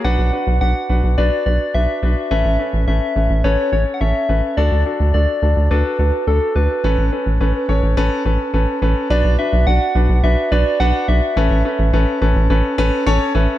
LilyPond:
<<
  \new Staff \with { instrumentName = "Soft synth lead" } { \time 4/4 \key b \minor \tempo 4 = 106 fis''4 fis''4 d''8 d''8 e''4 | e''4 e''4 cis''8 cis''16. fis''32 e''4 | d''4 d''4 b'4 a'8 b'8~ | b'2.~ b'8 r8 |
d''8 e''8 fis''4 e''8 d''8 fis''8 e''8~ | e''4. r2 r8 | }
  \new Staff \with { instrumentName = "Grand piano" } { \time 4/4 \key b \minor <d' fis' b'>8 <d' fis' b'>8 <d' fis' b'>8 <d' fis' b'>8 <d' fis' b'>8 <d' fis' b'>8 <d' fis' b'>8 <d' fis' b'>8 | <cis' a' b'>8 <cis' a' b'>8 <cis' a' b'>8 <cis' a' b'>8 <cis' a' b'>8 <cis' a' cis''>8 <cis' a' cis''>8 <cis' a' b'>8 | <d' fis' a'>8 <d' fis' a'>8 <d' fis' a'>8 <d' fis' a'>8 <d' fis' a'>8 <d' fis' a'>8 <d' fis' a'>8 <d' fis' a'>8 | <cis' a' b'>8 <cis' a' b'>8 <cis' a' b'>8 <cis' a' cis''>8 <cis' a' b'>8 <cis' a' b'>8 <cis' a' b'>8 <cis' a' b'>8 |
<d' fis' b'>8 <d' fis' b'>8 <d' fis' d''>8 <d' fis' b'>8 <d' fis' b'>8 <d' fis' b'>8 <d' fis' b'>8 <d' fis' b'>8 | <cis' a' b'>8 <cis' a' b'>8 <cis' a' b'>8 <cis' a' b'>8 <cis' a' b'>8 <cis' a' b'>8 <cis' a' cis'' cis'''>8 <cis' a' b' e''>8 | }
  \new Staff \with { instrumentName = "Analog synth bass" } { \clef bass \time 4/4 \key b \minor b,,16 b,,16 r16 b,,16 b,,16 r16 b,,16 b,,16 b,,16 r16 b,,16 r16 b,,16 r16 b,,16 r16 | a,,16 a,,16 r16 a,,16 a,,16 r16 a,,16 a,,16 a,,16 r16 a,,16 r16 a,,16 r16 a,,16 r16 | d,16 d,16 r16 d,16 d,16 r16 d,16 d,16 d,16 r16 d,16 r16 d,16 r16 d,16 r16 | a,,16 a,,16 r16 a,,16 a,,16 r16 a,,16 a,,16 a,,16 r16 a,,16 r16 a,,16 r16 a,,16 r16 |
b,,16 b,,16 r16 b,,16 b,,16 r16 b,,16 b,,16 b,,16 r16 b,,16 r16 b,,16 r16 b,,16 r16 | a,,16 a,,16 r16 a,,16 a,,16 r16 a,,16 a,,16 a,,16 r16 a,,16 r16 a,,16 r16 a,,16 r16 | }
>>